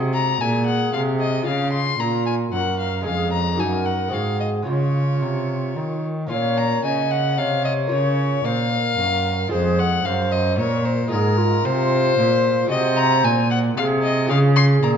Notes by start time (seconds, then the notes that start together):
Already playing: C3 G#3 F#4 G#4
0.14 A#5
0.40 A#2 G#4 G#5
0.66 F#5
0.93 C3 F5
1.20 D#5
1.42 G#3 F4 G#4
1.46 C#3 F5
1.73 C6
1.99 A#2 F4 A#5
2.26 G#5
2.52 F#2 A#4 F#5
2.80 F5
3.01 G#3 C#4 G#4
3.06 F2 G#4 F5
3.33 A#5
3.55 A#3 D#4 F#4
3.59 F#2 A#4 G#5
3.86 F#5
4.08 G#3 C4 F#4 G#4
4.13 G#2 F5
4.40 D#5
4.62 G#3 C#4 F4
4.67 C#3 F4 C#5
5.22 C3
5.77 D#3
6.27 A#3 C#4 F4 F5
6.31 A#2 C#5
6.58 A#5
6.84 C#3 D#5 G#5
7.11 F#5
7.38 C3 C#5 F5
7.65 D#5
7.87 A#3 F4
7.91 C#3 C#5
8.44 A#2 C5 F5
8.70 A#4
8.98 F#2
9.47 G#3 F4 G#4
9.52 F2 C5
9.79 F#5
10.04 F#2 C5 F5
10.32 D#5
10.57 A#2 A#4 C#5
10.85 C5
11.07 G#3 F4 G#4 A#4
11.12 G#2
11.37 F4
11.65 C3 C5
12.18 A#2
12.66 G#3 F#4 G#4
12.70 C3 C5 D#5
12.97 A#5
13.24 A#2 G#5
13.51 F#5
13.77 C3 G#4 F5
14.03 D#5
14.25 G#3 F4 G#4
14.30 C#3 G#4 F5
14.56 C6
14.83 A#2 A#5